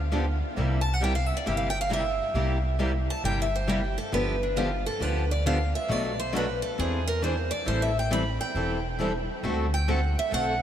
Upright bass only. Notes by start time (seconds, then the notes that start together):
Already playing: D2
0.57 C2
1.47 G1
2.34 C2
3.24 G1
4.13 G1
5.00 D2
5.90 B1
6.79 E2
7.67 A1
8.55 E1
9.43 D2
10.32 B1